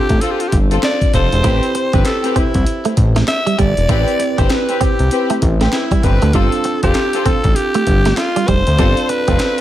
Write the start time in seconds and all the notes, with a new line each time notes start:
Already playing: C4 D4 F4 G4 A4
0.09 A1, kick, closed hi-hat
0.21 C4 F4 A4, closed hi-hat
0.31 G4
0.40 F4, closed hi-hat
0.48 G4
0.52 G1, kick, closed hi-hat
0.71 C4 F4 A4, closed hi-hat
0.83 D5, snare, clap, closed hi-hat
1.01 kick, closed hi-hat
1.13 F1 C4 F4 A4 C5, kick, closed hi-hat
1.32 E1, closed hi-hat
1.43 A1 A3 C4 E4 G4 B4 C5, kick, closed hi-hat
1.63 closed hi-hat
1.75 muted clean electric guitar stroke, closed hi-hat
1.93 G1 C4 G4 B4, kick, closed hi-hat
2.05 A4, snare, clap, closed hi-hat
2.24 C4 G4 B4, closed hi-hat
2.36 C2 C4 E4, kick, closed hi-hat
2.54 C2, kick, closed hi-hat
2.66 closed hi-hat
2.85 A3, closed hi-hat
2.97 A1, muted clean electric guitar stroke, kick, closed hi-hat
3.16 A3, snare, closed hi-hat
3.28 E5, muted clean electric guitar stroke, snare, clap, closed hi-hat
3.46 G3, closed hi-hat
3.58 G1 G3 D5, kick, closed hi-hat
3.77 E1, closed hi-hat
3.88 A1 A3 C4 E4 G4 B4, kick, closed hi-hat
4.08 closed hi-hat
4.19 muted clean electric guitar stroke, closed hi-hat
4.38 G1 C4 G4 B4 C5, kick, closed hi-hat
4.50 B4, snare, clap, closed hi-hat
4.69 C4 G4 B4, closed hi-hat
4.81 C2 C4 G4, kick, closed hi-hat
4.99 C2, closed hi-hat
5.11 C4 G4 B4, closed hi-hat
5.30 A3, closed hi-hat
5.42 A1, muted clean electric guitar stroke, kick, closed hi-hat
5.61 A3 C4 G4 B4, snare, closed hi-hat
5.73 E4, snare, clap, closed hi-hat
5.91 G3, kick, closed hi-hat
6.03 G1 C4 G4 B4, muted clean electric guitar stroke, kick, closed hi-hat
6.22 D2 A3, closed hi-hat
6.33 G1 G3 B3 C4 D4 F4 A4, kick, closed hi-hat
6.39 C4
6.52 closed hi-hat
6.64 muted clean electric guitar stroke, closed hi-hat
6.83 F1 C4 F4 G4 A4, kick, closed hi-hat
6.94 snare, clap, closed hi-hat
7.13 C4 F4 A4, closed hi-hat
7.25 A1 C4 A4, kick, closed hi-hat
7.44 A1, kick, closed hi-hat
7.56 G4, closed hi-hat
7.74 A3, closed hi-hat
7.87 G1, muted clean electric guitar stroke, kick, closed hi-hat
8.05 A3, snare, closed hi-hat
8.17 F4, muted clean electric guitar stroke, snare, clap, closed hi-hat
8.36 G3, closed hi-hat
8.48 F1 G3 C5, kick, closed hi-hat
8.67 D2, closed hi-hat
8.78 G1 G3 C4 D4 F4 A4 D5, kick, closed hi-hat
8.97 closed hi-hat
9.09 B4, muted clean electric guitar stroke, closed hi-hat
9.28 F1 C4 F4 A4, kick, closed hi-hat
9.39 snare, clap, closed hi-hat